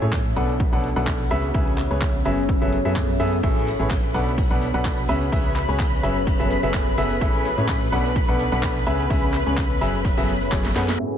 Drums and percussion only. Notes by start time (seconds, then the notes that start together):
0.02 closed hi-hat, tambourine
0.12 kick, clap, closed hi-hat, tambourine
0.25 closed hi-hat, tambourine
0.36 open hi-hat, tambourine
0.49 closed hi-hat, tambourine
0.60 kick, closed hi-hat, tambourine
0.72 closed hi-hat, tambourine
0.84 open hi-hat, tambourine
0.96 closed hi-hat, tambourine
1.07 kick, clap, closed hi-hat, tambourine
1.20 closed hi-hat, tambourine
1.30 open hi-hat, tambourine
1.43 closed hi-hat, tambourine
1.54 kick, closed hi-hat, tambourine
1.67 closed hi-hat, tambourine
1.78 clap, open hi-hat, tambourine
1.91 closed hi-hat, tambourine
2.02 kick, clap, closed hi-hat, tambourine
2.14 closed hi-hat, tambourine
2.25 open hi-hat, tambourine
2.38 closed hi-hat, tambourine
2.49 kick, closed hi-hat, tambourine
2.62 closed hi-hat, tambourine
2.72 open hi-hat, tambourine
2.85 closed hi-hat, tambourine
2.96 kick, clap, closed hi-hat, tambourine
3.08 closed hi-hat, tambourine
3.20 open hi-hat, tambourine
3.32 closed hi-hat, tambourine
3.43 kick, closed hi-hat, ride, tambourine, shaker
3.55 snare, closed hi-hat, tambourine, shaker
3.66 open hi-hat, ride, tambourine, shaker
3.80 closed hi-hat, tambourine, shaker
3.90 kick, snare, clap, closed hi-hat, ride, tambourine, shaker
4.03 closed hi-hat, tambourine, shaker
4.14 open hi-hat, ride, tambourine, shaker
4.27 snare, closed hi-hat, tambourine, shaker
4.38 kick, closed hi-hat, ride, tambourine, shaker
4.51 closed hi-hat, tambourine, shaker
4.61 open hi-hat, ride, tambourine, shaker
4.74 closed hi-hat, tambourine, shaker
4.85 kick, snare, clap, closed hi-hat, ride, tambourine, shaker
4.98 closed hi-hat, tambourine, shaker
5.09 open hi-hat, ride, tambourine, shaker
5.22 closed hi-hat, tambourine, shaker
5.32 kick, closed hi-hat, ride, tambourine, shaker
5.45 closed hi-hat, ride, tambourine, shaker
5.56 clap, open hi-hat, ride, tambourine, shaker
5.69 closed hi-hat, ride, tambourine, shaker
5.80 kick, snare, clap, closed hi-hat, ride, tambourine, shaker
5.92 closed hi-hat, tambourine, shaker
6.03 open hi-hat, ride, tambourine, shaker
6.16 closed hi-hat, tambourine, shaker
6.27 kick, closed hi-hat, ride, tambourine, shaker
6.39 snare, closed hi-hat, tambourine, shaker
6.50 open hi-hat, ride, tambourine, shaker
6.63 closed hi-hat, ride, tambourine, shaker
6.74 kick, snare, clap, closed hi-hat, ride, tambourine, shaker
6.87 closed hi-hat, tambourine, shaker
6.97 open hi-hat, ride, tambourine, shaker
7.10 closed hi-hat, tambourine, shaker
7.21 kick, closed hi-hat, ride, tambourine, shaker
7.34 snare, closed hi-hat, tambourine, shaker
7.45 open hi-hat, ride, tambourine, shaker
7.58 closed hi-hat, tambourine, shaker
7.68 kick, snare, clap, closed hi-hat, ride, tambourine, shaker
7.81 closed hi-hat, tambourine, shaker
7.92 open hi-hat, ride, tambourine, shaker
8.04 snare, closed hi-hat, tambourine, shaker
8.15 kick, closed hi-hat, ride, tambourine, shaker
8.29 closed hi-hat, tambourine, shaker
8.39 open hi-hat, ride, tambourine, shaker
8.52 closed hi-hat, tambourine, shaker
8.63 kick, snare, clap, closed hi-hat, ride, tambourine, shaker
8.76 closed hi-hat, tambourine, shaker
8.87 open hi-hat, ride, tambourine, shaker
8.99 closed hi-hat, tambourine, shaker
9.10 kick, closed hi-hat, ride, tambourine, shaker
9.23 closed hi-hat, ride, tambourine, shaker
9.34 clap, open hi-hat, ride, tambourine, shaker
9.47 closed hi-hat, ride, tambourine, shaker
9.57 kick, snare, clap, closed hi-hat, ride, tambourine, shaker
9.70 closed hi-hat, tambourine, shaker
9.81 snare, open hi-hat, ride, tambourine, shaker
9.94 closed hi-hat, tambourine, shaker
10.05 kick, snare, closed hi-hat, ride, tambourine, shaker
10.17 snare, closed hi-hat, ride, tambourine, shaker
10.23 snare, ride
10.28 open hi-hat, ride, tambourine, shaker
10.41 closed hi-hat, ride, tambourine, shaker
10.51 kick, snare, clap, closed hi-hat, tambourine, shaker
10.58 snare, ride
10.64 snare, closed hi-hat, ride, tambourine, shaker
10.70 snare, ride
10.76 snare, open hi-hat, ride, tambourine, shaker
10.88 snare, closed hi-hat, ride, tambourine, shaker